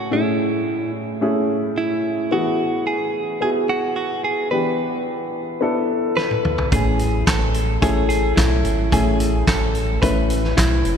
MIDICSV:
0, 0, Header, 1, 5, 480
1, 0, Start_track
1, 0, Key_signature, 3, "major"
1, 0, Tempo, 550358
1, 104, Time_signature, 4, 2, 24, 8
1, 9568, End_track
2, 0, Start_track
2, 0, Title_t, "Clean electric guitar"
2, 0, Program_c, 0, 27
2, 0, Note_on_c, 0, 66, 80
2, 114, Note_on_c, 0, 64, 68
2, 119, Note_off_c, 0, 66, 0
2, 794, Note_off_c, 0, 64, 0
2, 1549, Note_on_c, 0, 64, 66
2, 2027, Note_on_c, 0, 66, 74
2, 2041, Note_off_c, 0, 64, 0
2, 2472, Note_off_c, 0, 66, 0
2, 2501, Note_on_c, 0, 68, 74
2, 2973, Note_off_c, 0, 68, 0
2, 2983, Note_on_c, 0, 68, 85
2, 3048, Note_off_c, 0, 68, 0
2, 3222, Note_on_c, 0, 66, 82
2, 3445, Note_off_c, 0, 66, 0
2, 3455, Note_on_c, 0, 66, 75
2, 3699, Note_off_c, 0, 66, 0
2, 3702, Note_on_c, 0, 68, 81
2, 3926, Note_off_c, 0, 68, 0
2, 3934, Note_on_c, 0, 71, 78
2, 4385, Note_off_c, 0, 71, 0
2, 5379, Note_on_c, 0, 71, 83
2, 5828, Note_off_c, 0, 71, 0
2, 5866, Note_on_c, 0, 68, 75
2, 6311, Note_off_c, 0, 68, 0
2, 6342, Note_on_c, 0, 69, 81
2, 6819, Note_off_c, 0, 69, 0
2, 6823, Note_on_c, 0, 68, 76
2, 7044, Note_off_c, 0, 68, 0
2, 7055, Note_on_c, 0, 68, 85
2, 7291, Note_on_c, 0, 64, 69
2, 7306, Note_off_c, 0, 68, 0
2, 7785, Note_on_c, 0, 68, 78
2, 7792, Note_off_c, 0, 64, 0
2, 8267, Note_off_c, 0, 68, 0
2, 8271, Note_on_c, 0, 69, 82
2, 8734, Note_off_c, 0, 69, 0
2, 8737, Note_on_c, 0, 71, 84
2, 9186, Note_off_c, 0, 71, 0
2, 9220, Note_on_c, 0, 64, 68
2, 9568, Note_off_c, 0, 64, 0
2, 9568, End_track
3, 0, Start_track
3, 0, Title_t, "Upright piano"
3, 0, Program_c, 1, 0
3, 0, Control_c, 1, 64, 127
3, 0, Note_on_c, 1, 57, 57
3, 0, Note_on_c, 1, 61, 49
3, 0, Note_on_c, 1, 64, 49
3, 0, Note_on_c, 1, 80, 59
3, 94, Note_off_c, 1, 57, 0
3, 94, Note_on_c, 1, 57, 61
3, 99, Note_off_c, 1, 61, 0
3, 99, Note_on_c, 1, 45, 51
3, 99, Note_on_c, 1, 61, 56
3, 102, Note_off_c, 1, 64, 0
3, 102, Note_on_c, 1, 64, 53
3, 108, Note_on_c, 1, 68, 61
3, 787, Note_off_c, 1, 45, 0
3, 858, Note_off_c, 1, 57, 0
3, 860, Note_off_c, 1, 61, 0
3, 862, Note_off_c, 1, 64, 0
3, 865, Note_off_c, 1, 68, 0
3, 1055, Note_on_c, 1, 57, 67
3, 1059, Note_on_c, 1, 61, 63
3, 1064, Note_on_c, 1, 64, 65
3, 1066, Note_on_c, 1, 68, 76
3, 1818, Note_off_c, 1, 57, 0
3, 1820, Note_off_c, 1, 61, 0
3, 1823, Note_off_c, 1, 64, 0
3, 1824, Note_off_c, 1, 68, 0
3, 2018, Note_on_c, 1, 59, 59
3, 2023, Note_on_c, 1, 64, 56
3, 2026, Note_on_c, 1, 52, 54
3, 2030, Note_on_c, 1, 66, 58
3, 2031, Note_on_c, 1, 68, 68
3, 2036, Note_off_c, 1, 80, 0
3, 2036, Control_c, 1, 64, 0
3, 2208, Control_c, 1, 64, 127
3, 2710, Note_off_c, 1, 52, 0
3, 2780, Note_off_c, 1, 59, 0
3, 2782, Note_off_c, 1, 64, 0
3, 2786, Note_off_c, 1, 66, 0
3, 2786, Note_off_c, 1, 68, 0
3, 2973, Note_on_c, 1, 59, 56
3, 2978, Note_on_c, 1, 64, 53
3, 2982, Note_on_c, 1, 66, 56
3, 2986, Note_on_c, 1, 68, 66
3, 3737, Note_off_c, 1, 59, 0
3, 3740, Note_off_c, 1, 64, 0
3, 3742, Note_off_c, 1, 66, 0
3, 3744, Note_off_c, 1, 68, 0
3, 3934, Note_on_c, 1, 59, 62
3, 3937, Note_on_c, 1, 62, 53
3, 3940, Note_on_c, 1, 52, 54
3, 3943, Note_on_c, 1, 64, 53
3, 3946, Note_on_c, 1, 67, 67
3, 3957, Control_c, 1, 64, 0
3, 4124, Control_c, 1, 64, 127
3, 4627, Note_off_c, 1, 52, 0
3, 4697, Note_off_c, 1, 59, 0
3, 4699, Note_off_c, 1, 62, 0
3, 4702, Note_off_c, 1, 64, 0
3, 4704, Note_off_c, 1, 67, 0
3, 4890, Note_on_c, 1, 59, 69
3, 4894, Note_on_c, 1, 62, 62
3, 4901, Note_on_c, 1, 64, 60
3, 4905, Note_on_c, 1, 69, 75
3, 5656, Note_off_c, 1, 59, 0
3, 5658, Note_off_c, 1, 62, 0
3, 5661, Note_off_c, 1, 64, 0
3, 5663, Note_off_c, 1, 69, 0
3, 5851, Note_on_c, 1, 57, 59
3, 5858, Note_on_c, 1, 61, 51
3, 5860, Note_on_c, 1, 45, 52
3, 5861, Note_on_c, 1, 64, 52
3, 5866, Note_on_c, 1, 80, 67
3, 5876, Control_c, 1, 64, 0
3, 6018, Control_c, 1, 64, 127
3, 6547, Note_off_c, 1, 45, 0
3, 6616, Note_off_c, 1, 57, 0
3, 6619, Note_off_c, 1, 61, 0
3, 6621, Note_off_c, 1, 64, 0
3, 6623, Note_off_c, 1, 80, 0
3, 6813, Note_on_c, 1, 57, 61
3, 6817, Note_on_c, 1, 61, 50
3, 6819, Note_on_c, 1, 64, 53
3, 6824, Note_on_c, 1, 69, 62
3, 7577, Note_off_c, 1, 57, 0
3, 7579, Note_off_c, 1, 61, 0
3, 7580, Note_off_c, 1, 64, 0
3, 7583, Note_off_c, 1, 69, 0
3, 7780, Note_on_c, 1, 57, 64
3, 7783, Note_on_c, 1, 61, 54
3, 7787, Note_on_c, 1, 45, 53
3, 7788, Note_on_c, 1, 64, 54
3, 7791, Note_on_c, 1, 80, 64
3, 8470, Note_off_c, 1, 45, 0
3, 8541, Note_off_c, 1, 57, 0
3, 8542, Note_off_c, 1, 61, 0
3, 8544, Note_off_c, 1, 64, 0
3, 8546, Note_off_c, 1, 80, 0
3, 8738, Note_on_c, 1, 57, 59
3, 8743, Note_on_c, 1, 61, 53
3, 8748, Note_on_c, 1, 64, 54
3, 8754, Note_on_c, 1, 71, 66
3, 9500, Note_off_c, 1, 57, 0
3, 9502, Note_off_c, 1, 61, 0
3, 9504, Note_off_c, 1, 64, 0
3, 9507, Note_off_c, 1, 71, 0
3, 9568, End_track
4, 0, Start_track
4, 0, Title_t, "Analog synth bass"
4, 0, Program_c, 2, 38
4, 5860, Note_on_c, 2, 33, 97
4, 6308, Note_off_c, 2, 33, 0
4, 6343, Note_on_c, 2, 33, 90
4, 6790, Note_off_c, 2, 33, 0
4, 6823, Note_on_c, 2, 33, 105
4, 7269, Note_off_c, 2, 33, 0
4, 7304, Note_on_c, 2, 35, 87
4, 7527, Note_off_c, 2, 35, 0
4, 7549, Note_on_c, 2, 32, 79
4, 7769, Note_off_c, 2, 32, 0
4, 7781, Note_on_c, 2, 33, 95
4, 8229, Note_off_c, 2, 33, 0
4, 8262, Note_on_c, 2, 33, 78
4, 8709, Note_off_c, 2, 33, 0
4, 8744, Note_on_c, 2, 33, 88
4, 9190, Note_off_c, 2, 33, 0
4, 9225, Note_on_c, 2, 35, 82
4, 9447, Note_off_c, 2, 35, 0
4, 9466, Note_on_c, 2, 30, 83
4, 9568, Note_off_c, 2, 30, 0
4, 9568, End_track
5, 0, Start_track
5, 0, Title_t, "Drums"
5, 5381, Note_on_c, 9, 38, 45
5, 5469, Note_off_c, 9, 38, 0
5, 5503, Note_on_c, 9, 48, 50
5, 5590, Note_off_c, 9, 48, 0
5, 5624, Note_on_c, 9, 45, 76
5, 5711, Note_off_c, 9, 45, 0
5, 5741, Note_on_c, 9, 43, 74
5, 5828, Note_off_c, 9, 43, 0
5, 5862, Note_on_c, 9, 36, 93
5, 5862, Note_on_c, 9, 42, 77
5, 5949, Note_off_c, 9, 36, 0
5, 5949, Note_off_c, 9, 42, 0
5, 6099, Note_on_c, 9, 42, 61
5, 6186, Note_off_c, 9, 42, 0
5, 6341, Note_on_c, 9, 38, 93
5, 6343, Note_on_c, 9, 36, 100
5, 6346, Note_on_c, 9, 42, 68
5, 6349, Note_on_c, 9, 39, 75
5, 6428, Note_off_c, 9, 38, 0
5, 6430, Note_off_c, 9, 36, 0
5, 6433, Note_off_c, 9, 42, 0
5, 6436, Note_off_c, 9, 39, 0
5, 6579, Note_on_c, 9, 42, 59
5, 6666, Note_off_c, 9, 42, 0
5, 6823, Note_on_c, 9, 36, 88
5, 6826, Note_on_c, 9, 42, 63
5, 6910, Note_off_c, 9, 36, 0
5, 6913, Note_off_c, 9, 42, 0
5, 7062, Note_on_c, 9, 42, 61
5, 7149, Note_off_c, 9, 42, 0
5, 7302, Note_on_c, 9, 38, 98
5, 7304, Note_on_c, 9, 36, 88
5, 7305, Note_on_c, 9, 42, 86
5, 7309, Note_on_c, 9, 39, 76
5, 7389, Note_off_c, 9, 38, 0
5, 7391, Note_off_c, 9, 36, 0
5, 7392, Note_off_c, 9, 42, 0
5, 7397, Note_off_c, 9, 39, 0
5, 7541, Note_on_c, 9, 42, 59
5, 7628, Note_off_c, 9, 42, 0
5, 7783, Note_on_c, 9, 36, 88
5, 7784, Note_on_c, 9, 42, 83
5, 7870, Note_off_c, 9, 36, 0
5, 7871, Note_off_c, 9, 42, 0
5, 8024, Note_on_c, 9, 42, 67
5, 8111, Note_off_c, 9, 42, 0
5, 8263, Note_on_c, 9, 36, 92
5, 8263, Note_on_c, 9, 38, 87
5, 8267, Note_on_c, 9, 42, 62
5, 8270, Note_on_c, 9, 39, 75
5, 8350, Note_off_c, 9, 38, 0
5, 8351, Note_off_c, 9, 36, 0
5, 8354, Note_off_c, 9, 42, 0
5, 8357, Note_off_c, 9, 39, 0
5, 8501, Note_on_c, 9, 42, 60
5, 8588, Note_off_c, 9, 42, 0
5, 8744, Note_on_c, 9, 36, 90
5, 8748, Note_on_c, 9, 42, 66
5, 8831, Note_off_c, 9, 36, 0
5, 8835, Note_off_c, 9, 42, 0
5, 8982, Note_on_c, 9, 42, 61
5, 9069, Note_off_c, 9, 42, 0
5, 9106, Note_on_c, 9, 38, 30
5, 9194, Note_off_c, 9, 38, 0
5, 9222, Note_on_c, 9, 38, 99
5, 9224, Note_on_c, 9, 36, 86
5, 9225, Note_on_c, 9, 42, 86
5, 9229, Note_on_c, 9, 39, 78
5, 9309, Note_off_c, 9, 38, 0
5, 9312, Note_off_c, 9, 36, 0
5, 9312, Note_off_c, 9, 42, 0
5, 9316, Note_off_c, 9, 39, 0
5, 9462, Note_on_c, 9, 42, 53
5, 9549, Note_off_c, 9, 42, 0
5, 9568, End_track
0, 0, End_of_file